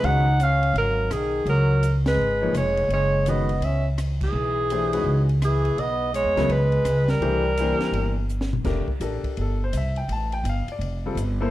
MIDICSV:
0, 0, Header, 1, 7, 480
1, 0, Start_track
1, 0, Tempo, 359281
1, 51, Time_signature, 4, 2, 24, 8
1, 15372, End_track
2, 0, Start_track
2, 0, Title_t, "Alto saxophone"
2, 0, Program_c, 0, 65
2, 70, Note_on_c, 0, 78, 103
2, 574, Note_on_c, 0, 77, 91
2, 594, Note_off_c, 0, 78, 0
2, 1031, Note_off_c, 0, 77, 0
2, 1039, Note_on_c, 0, 70, 99
2, 1502, Note_on_c, 0, 68, 85
2, 1522, Note_off_c, 0, 70, 0
2, 1974, Note_off_c, 0, 68, 0
2, 1995, Note_on_c, 0, 70, 84
2, 2559, Note_off_c, 0, 70, 0
2, 2774, Note_on_c, 0, 71, 90
2, 3371, Note_off_c, 0, 71, 0
2, 3436, Note_on_c, 0, 73, 84
2, 3867, Note_off_c, 0, 73, 0
2, 3922, Note_on_c, 0, 73, 93
2, 4400, Note_on_c, 0, 75, 78
2, 4420, Note_off_c, 0, 73, 0
2, 4872, Note_on_c, 0, 76, 81
2, 4892, Note_off_c, 0, 75, 0
2, 5164, Note_off_c, 0, 76, 0
2, 5658, Note_on_c, 0, 68, 92
2, 7028, Note_off_c, 0, 68, 0
2, 7281, Note_on_c, 0, 68, 90
2, 7741, Note_on_c, 0, 75, 106
2, 7761, Note_off_c, 0, 68, 0
2, 8210, Note_off_c, 0, 75, 0
2, 8222, Note_on_c, 0, 73, 89
2, 8704, Note_on_c, 0, 71, 95
2, 8724, Note_off_c, 0, 73, 0
2, 9489, Note_on_c, 0, 70, 87
2, 9509, Note_off_c, 0, 71, 0
2, 11092, Note_off_c, 0, 70, 0
2, 15372, End_track
3, 0, Start_track
3, 0, Title_t, "Grand piano"
3, 0, Program_c, 1, 0
3, 43, Note_on_c, 1, 56, 58
3, 52, Note_on_c, 1, 51, 58
3, 53, Note_on_c, 1, 61, 60
3, 57, Note_on_c, 1, 71, 68
3, 61, Note_on_c, 1, 66, 59
3, 323, Note_off_c, 1, 56, 0
3, 327, Note_off_c, 1, 51, 0
3, 327, Note_off_c, 1, 61, 0
3, 329, Note_off_c, 1, 71, 0
3, 331, Note_off_c, 1, 66, 0
3, 3227, Note_on_c, 1, 53, 71
3, 3232, Note_on_c, 1, 58, 57
3, 3232, Note_on_c, 1, 63, 61
3, 3232, Note_on_c, 1, 68, 57
3, 3242, Note_on_c, 1, 73, 71
3, 3385, Note_off_c, 1, 53, 0
3, 3387, Note_off_c, 1, 68, 0
3, 3388, Note_off_c, 1, 58, 0
3, 3388, Note_off_c, 1, 63, 0
3, 3393, Note_off_c, 1, 73, 0
3, 4377, Note_on_c, 1, 51, 62
3, 4380, Note_on_c, 1, 56, 51
3, 4384, Note_on_c, 1, 66, 53
3, 4389, Note_on_c, 1, 71, 70
3, 4390, Note_on_c, 1, 61, 55
3, 4646, Note_off_c, 1, 51, 0
3, 4647, Note_off_c, 1, 56, 0
3, 4649, Note_off_c, 1, 66, 0
3, 4652, Note_off_c, 1, 61, 0
3, 4652, Note_off_c, 1, 71, 0
3, 6300, Note_on_c, 1, 52, 63
3, 6300, Note_on_c, 1, 62, 51
3, 6306, Note_on_c, 1, 72, 67
3, 6307, Note_on_c, 1, 57, 57
3, 6310, Note_on_c, 1, 67, 50
3, 6566, Note_off_c, 1, 52, 0
3, 6566, Note_off_c, 1, 62, 0
3, 6570, Note_off_c, 1, 57, 0
3, 6570, Note_off_c, 1, 72, 0
3, 6571, Note_off_c, 1, 67, 0
3, 6596, Note_on_c, 1, 56, 56
3, 6597, Note_on_c, 1, 61, 63
3, 6600, Note_on_c, 1, 63, 62
3, 6601, Note_on_c, 1, 71, 68
3, 6602, Note_on_c, 1, 66, 59
3, 7010, Note_off_c, 1, 56, 0
3, 7010, Note_off_c, 1, 61, 0
3, 7012, Note_off_c, 1, 63, 0
3, 7012, Note_off_c, 1, 71, 0
3, 7013, Note_off_c, 1, 66, 0
3, 8507, Note_on_c, 1, 49, 73
3, 8511, Note_on_c, 1, 54, 69
3, 8512, Note_on_c, 1, 59, 68
3, 8515, Note_on_c, 1, 70, 77
3, 8521, Note_on_c, 1, 64, 65
3, 8663, Note_off_c, 1, 49, 0
3, 8664, Note_off_c, 1, 54, 0
3, 8665, Note_off_c, 1, 59, 0
3, 8667, Note_off_c, 1, 70, 0
3, 8670, Note_off_c, 1, 64, 0
3, 9643, Note_on_c, 1, 52, 71
3, 9643, Note_on_c, 1, 57, 64
3, 9650, Note_on_c, 1, 67, 66
3, 9652, Note_on_c, 1, 62, 63
3, 9652, Note_on_c, 1, 72, 71
3, 9918, Note_off_c, 1, 52, 0
3, 9918, Note_off_c, 1, 57, 0
3, 9921, Note_off_c, 1, 67, 0
3, 9922, Note_off_c, 1, 62, 0
3, 9922, Note_off_c, 1, 72, 0
3, 10146, Note_on_c, 1, 52, 71
3, 10151, Note_on_c, 1, 58, 65
3, 10152, Note_on_c, 1, 67, 65
3, 10162, Note_on_c, 1, 72, 78
3, 10163, Note_on_c, 1, 62, 63
3, 10859, Note_off_c, 1, 52, 0
3, 10861, Note_off_c, 1, 58, 0
3, 10862, Note_off_c, 1, 67, 0
3, 10867, Note_off_c, 1, 62, 0
3, 10867, Note_off_c, 1, 72, 0
3, 11557, Note_on_c, 1, 62, 57
3, 11558, Note_on_c, 1, 70, 69
3, 11560, Note_on_c, 1, 57, 63
3, 11570, Note_on_c, 1, 67, 60
3, 11836, Note_off_c, 1, 62, 0
3, 11836, Note_off_c, 1, 70, 0
3, 11837, Note_off_c, 1, 57, 0
3, 11842, Note_off_c, 1, 67, 0
3, 12036, Note_on_c, 1, 67, 51
3, 12038, Note_on_c, 1, 62, 52
3, 12043, Note_on_c, 1, 69, 58
3, 12043, Note_on_c, 1, 70, 55
3, 12556, Note_off_c, 1, 69, 0
3, 12576, Note_on_c, 1, 69, 68
3, 12765, Note_off_c, 1, 67, 0
3, 12767, Note_off_c, 1, 62, 0
3, 12769, Note_off_c, 1, 70, 0
3, 12848, Note_off_c, 1, 69, 0
3, 12877, Note_on_c, 1, 72, 82
3, 13023, Note_off_c, 1, 72, 0
3, 13057, Note_on_c, 1, 76, 72
3, 13326, Note_on_c, 1, 79, 69
3, 13329, Note_off_c, 1, 76, 0
3, 13487, Note_off_c, 1, 79, 0
3, 13524, Note_on_c, 1, 81, 94
3, 13803, Note_off_c, 1, 81, 0
3, 13806, Note_on_c, 1, 79, 77
3, 13967, Note_off_c, 1, 79, 0
3, 14020, Note_on_c, 1, 77, 84
3, 14291, Note_off_c, 1, 77, 0
3, 14320, Note_on_c, 1, 74, 71
3, 14771, Note_on_c, 1, 55, 62
3, 14776, Note_on_c, 1, 65, 63
3, 14779, Note_on_c, 1, 69, 68
3, 14783, Note_on_c, 1, 60, 57
3, 14918, Note_off_c, 1, 55, 0
3, 14921, Note_off_c, 1, 65, 0
3, 14922, Note_off_c, 1, 69, 0
3, 14924, Note_off_c, 1, 60, 0
3, 15239, Note_on_c, 1, 69, 76
3, 15241, Note_on_c, 1, 64, 65
3, 15242, Note_on_c, 1, 58, 82
3, 15255, Note_on_c, 1, 72, 86
3, 15372, Note_off_c, 1, 58, 0
3, 15372, Note_off_c, 1, 64, 0
3, 15372, Note_off_c, 1, 69, 0
3, 15372, Note_off_c, 1, 72, 0
3, 15372, Note_off_c, 1, 74, 0
3, 15372, End_track
4, 0, Start_track
4, 0, Title_t, "Trombone"
4, 0, Program_c, 2, 57
4, 49, Note_on_c, 2, 63, 94
4, 540, Note_on_c, 2, 61, 87
4, 560, Note_off_c, 2, 63, 0
4, 1014, Note_off_c, 2, 61, 0
4, 1046, Note_on_c, 2, 54, 68
4, 1500, Note_on_c, 2, 51, 69
4, 1521, Note_off_c, 2, 54, 0
4, 1952, Note_off_c, 2, 51, 0
4, 1960, Note_on_c, 2, 54, 89
4, 2538, Note_off_c, 2, 54, 0
4, 2758, Note_on_c, 2, 56, 73
4, 3362, Note_off_c, 2, 56, 0
4, 3403, Note_on_c, 2, 56, 72
4, 3849, Note_off_c, 2, 56, 0
4, 3895, Note_on_c, 2, 56, 80
4, 4380, Note_on_c, 2, 59, 74
4, 4400, Note_off_c, 2, 56, 0
4, 4874, Note_on_c, 2, 61, 65
4, 4894, Note_off_c, 2, 59, 0
4, 5165, Note_off_c, 2, 61, 0
4, 5647, Note_on_c, 2, 52, 69
4, 7023, Note_off_c, 2, 52, 0
4, 7256, Note_on_c, 2, 52, 79
4, 7743, Note_on_c, 2, 59, 89
4, 7763, Note_off_c, 2, 52, 0
4, 8197, Note_off_c, 2, 59, 0
4, 8205, Note_on_c, 2, 56, 84
4, 8663, Note_off_c, 2, 56, 0
4, 8663, Note_on_c, 2, 56, 72
4, 9435, Note_on_c, 2, 55, 75
4, 9455, Note_off_c, 2, 56, 0
4, 11065, Note_off_c, 2, 55, 0
4, 15372, End_track
5, 0, Start_track
5, 0, Title_t, "Upright bass"
5, 0, Program_c, 3, 32
5, 41, Note_on_c, 3, 37, 90
5, 956, Note_off_c, 3, 37, 0
5, 983, Note_on_c, 3, 32, 94
5, 1440, Note_off_c, 3, 32, 0
5, 1490, Note_on_c, 3, 35, 81
5, 1935, Note_off_c, 3, 35, 0
5, 1944, Note_on_c, 3, 37, 93
5, 2866, Note_off_c, 3, 37, 0
5, 2900, Note_on_c, 3, 32, 76
5, 3358, Note_off_c, 3, 32, 0
5, 3380, Note_on_c, 3, 29, 84
5, 3837, Note_off_c, 3, 29, 0
5, 3855, Note_on_c, 3, 30, 86
5, 4779, Note_off_c, 3, 30, 0
5, 4816, Note_on_c, 3, 37, 82
5, 5740, Note_off_c, 3, 37, 0
5, 5779, Note_on_c, 3, 35, 94
5, 6701, Note_off_c, 3, 35, 0
5, 6731, Note_on_c, 3, 37, 92
5, 7657, Note_off_c, 3, 37, 0
5, 7692, Note_on_c, 3, 35, 86
5, 8300, Note_off_c, 3, 35, 0
5, 8339, Note_on_c, 3, 40, 66
5, 8487, Note_off_c, 3, 40, 0
5, 8495, Note_on_c, 3, 37, 65
5, 8656, Note_off_c, 3, 37, 0
5, 8669, Note_on_c, 3, 37, 84
5, 9120, Note_off_c, 3, 37, 0
5, 9138, Note_on_c, 3, 37, 84
5, 9594, Note_off_c, 3, 37, 0
5, 9617, Note_on_c, 3, 36, 81
5, 10362, Note_off_c, 3, 36, 0
5, 10576, Note_on_c, 3, 31, 80
5, 11500, Note_off_c, 3, 31, 0
5, 11545, Note_on_c, 3, 29, 79
5, 11838, Note_off_c, 3, 29, 0
5, 12023, Note_on_c, 3, 33, 83
5, 12318, Note_off_c, 3, 33, 0
5, 12524, Note_on_c, 3, 31, 83
5, 12986, Note_off_c, 3, 31, 0
5, 12994, Note_on_c, 3, 36, 87
5, 13462, Note_off_c, 3, 36, 0
5, 13470, Note_on_c, 3, 33, 88
5, 13933, Note_off_c, 3, 33, 0
5, 13941, Note_on_c, 3, 31, 86
5, 14238, Note_off_c, 3, 31, 0
5, 14412, Note_on_c, 3, 29, 85
5, 14888, Note_off_c, 3, 29, 0
5, 14896, Note_on_c, 3, 31, 89
5, 15372, Note_off_c, 3, 31, 0
5, 15372, End_track
6, 0, Start_track
6, 0, Title_t, "Muted upright bass strokes"
6, 10417, Note_on_c, 9, 29, 37
6, 10551, Note_off_c, 9, 29, 0
6, 11852, Note_on_c, 9, 29, 36
6, 11986, Note_off_c, 9, 29, 0
6, 12334, Note_on_c, 9, 29, 37
6, 12468, Note_off_c, 9, 29, 0
6, 15372, End_track
7, 0, Start_track
7, 0, Title_t, "Drums"
7, 49, Note_on_c, 9, 51, 56
7, 182, Note_off_c, 9, 51, 0
7, 531, Note_on_c, 9, 44, 63
7, 531, Note_on_c, 9, 51, 67
7, 664, Note_off_c, 9, 44, 0
7, 664, Note_off_c, 9, 51, 0
7, 838, Note_on_c, 9, 51, 41
7, 971, Note_off_c, 9, 51, 0
7, 1009, Note_on_c, 9, 51, 54
7, 1143, Note_off_c, 9, 51, 0
7, 1480, Note_on_c, 9, 37, 66
7, 1482, Note_on_c, 9, 44, 62
7, 1482, Note_on_c, 9, 51, 66
7, 1614, Note_off_c, 9, 37, 0
7, 1615, Note_off_c, 9, 44, 0
7, 1615, Note_off_c, 9, 51, 0
7, 1956, Note_on_c, 9, 51, 50
7, 2090, Note_off_c, 9, 51, 0
7, 2442, Note_on_c, 9, 44, 56
7, 2442, Note_on_c, 9, 51, 64
7, 2576, Note_off_c, 9, 44, 0
7, 2576, Note_off_c, 9, 51, 0
7, 2751, Note_on_c, 9, 38, 82
7, 2753, Note_on_c, 9, 51, 64
7, 2885, Note_off_c, 9, 38, 0
7, 2886, Note_off_c, 9, 51, 0
7, 3399, Note_on_c, 9, 37, 63
7, 3400, Note_on_c, 9, 44, 66
7, 3400, Note_on_c, 9, 51, 70
7, 3533, Note_off_c, 9, 37, 0
7, 3534, Note_off_c, 9, 44, 0
7, 3534, Note_off_c, 9, 51, 0
7, 3704, Note_on_c, 9, 51, 42
7, 3838, Note_off_c, 9, 51, 0
7, 3879, Note_on_c, 9, 51, 58
7, 4013, Note_off_c, 9, 51, 0
7, 4354, Note_on_c, 9, 44, 65
7, 4354, Note_on_c, 9, 51, 66
7, 4488, Note_off_c, 9, 44, 0
7, 4488, Note_off_c, 9, 51, 0
7, 4664, Note_on_c, 9, 51, 44
7, 4797, Note_off_c, 9, 51, 0
7, 4837, Note_on_c, 9, 51, 62
7, 4971, Note_off_c, 9, 51, 0
7, 5317, Note_on_c, 9, 37, 62
7, 5318, Note_on_c, 9, 44, 58
7, 5318, Note_on_c, 9, 51, 68
7, 5451, Note_off_c, 9, 37, 0
7, 5452, Note_off_c, 9, 44, 0
7, 5452, Note_off_c, 9, 51, 0
7, 5623, Note_on_c, 9, 49, 64
7, 5624, Note_on_c, 9, 36, 73
7, 5757, Note_off_c, 9, 36, 0
7, 5757, Note_off_c, 9, 49, 0
7, 6281, Note_on_c, 9, 44, 50
7, 6281, Note_on_c, 9, 51, 68
7, 6415, Note_off_c, 9, 44, 0
7, 6415, Note_off_c, 9, 51, 0
7, 6587, Note_on_c, 9, 51, 70
7, 6720, Note_off_c, 9, 51, 0
7, 7070, Note_on_c, 9, 51, 42
7, 7204, Note_off_c, 9, 51, 0
7, 7241, Note_on_c, 9, 37, 69
7, 7242, Note_on_c, 9, 44, 54
7, 7242, Note_on_c, 9, 51, 70
7, 7374, Note_off_c, 9, 37, 0
7, 7376, Note_off_c, 9, 44, 0
7, 7376, Note_off_c, 9, 51, 0
7, 7547, Note_on_c, 9, 51, 41
7, 7680, Note_off_c, 9, 51, 0
7, 7723, Note_on_c, 9, 51, 50
7, 7857, Note_off_c, 9, 51, 0
7, 8205, Note_on_c, 9, 44, 52
7, 8205, Note_on_c, 9, 51, 63
7, 8339, Note_off_c, 9, 44, 0
7, 8339, Note_off_c, 9, 51, 0
7, 8512, Note_on_c, 9, 38, 32
7, 8513, Note_on_c, 9, 51, 47
7, 8645, Note_off_c, 9, 38, 0
7, 8647, Note_off_c, 9, 51, 0
7, 8677, Note_on_c, 9, 51, 61
7, 8811, Note_off_c, 9, 51, 0
7, 8978, Note_on_c, 9, 51, 41
7, 9112, Note_off_c, 9, 51, 0
7, 9151, Note_on_c, 9, 37, 67
7, 9152, Note_on_c, 9, 44, 70
7, 9152, Note_on_c, 9, 51, 75
7, 9285, Note_off_c, 9, 37, 0
7, 9286, Note_off_c, 9, 44, 0
7, 9286, Note_off_c, 9, 51, 0
7, 9462, Note_on_c, 9, 38, 46
7, 9464, Note_on_c, 9, 51, 45
7, 9596, Note_off_c, 9, 38, 0
7, 9597, Note_off_c, 9, 51, 0
7, 9644, Note_on_c, 9, 51, 49
7, 9777, Note_off_c, 9, 51, 0
7, 10119, Note_on_c, 9, 44, 54
7, 10119, Note_on_c, 9, 51, 65
7, 10253, Note_off_c, 9, 44, 0
7, 10253, Note_off_c, 9, 51, 0
7, 10427, Note_on_c, 9, 38, 39
7, 10428, Note_on_c, 9, 51, 45
7, 10560, Note_off_c, 9, 38, 0
7, 10561, Note_off_c, 9, 51, 0
7, 10601, Note_on_c, 9, 51, 57
7, 10735, Note_off_c, 9, 51, 0
7, 11077, Note_on_c, 9, 44, 59
7, 11210, Note_off_c, 9, 44, 0
7, 11235, Note_on_c, 9, 38, 54
7, 11369, Note_off_c, 9, 38, 0
7, 11397, Note_on_c, 9, 43, 75
7, 11530, Note_off_c, 9, 43, 0
7, 11550, Note_on_c, 9, 38, 33
7, 11550, Note_on_c, 9, 49, 62
7, 11553, Note_on_c, 9, 36, 61
7, 11684, Note_off_c, 9, 38, 0
7, 11684, Note_off_c, 9, 49, 0
7, 11686, Note_off_c, 9, 36, 0
7, 11861, Note_on_c, 9, 36, 57
7, 11994, Note_off_c, 9, 36, 0
7, 12032, Note_on_c, 9, 44, 56
7, 12032, Note_on_c, 9, 51, 62
7, 12166, Note_off_c, 9, 44, 0
7, 12166, Note_off_c, 9, 51, 0
7, 12342, Note_on_c, 9, 36, 42
7, 12347, Note_on_c, 9, 51, 47
7, 12476, Note_off_c, 9, 36, 0
7, 12481, Note_off_c, 9, 51, 0
7, 12518, Note_on_c, 9, 51, 49
7, 12651, Note_off_c, 9, 51, 0
7, 12998, Note_on_c, 9, 44, 62
7, 12998, Note_on_c, 9, 51, 71
7, 13132, Note_off_c, 9, 44, 0
7, 13132, Note_off_c, 9, 51, 0
7, 13308, Note_on_c, 9, 51, 41
7, 13441, Note_off_c, 9, 51, 0
7, 13480, Note_on_c, 9, 51, 62
7, 13613, Note_off_c, 9, 51, 0
7, 13790, Note_on_c, 9, 51, 47
7, 13923, Note_off_c, 9, 51, 0
7, 13961, Note_on_c, 9, 44, 49
7, 13961, Note_on_c, 9, 51, 66
7, 14094, Note_off_c, 9, 44, 0
7, 14094, Note_off_c, 9, 51, 0
7, 14270, Note_on_c, 9, 51, 43
7, 14403, Note_off_c, 9, 51, 0
7, 14445, Note_on_c, 9, 51, 55
7, 14579, Note_off_c, 9, 51, 0
7, 14927, Note_on_c, 9, 44, 60
7, 14927, Note_on_c, 9, 51, 67
7, 15060, Note_off_c, 9, 44, 0
7, 15060, Note_off_c, 9, 51, 0
7, 15372, End_track
0, 0, End_of_file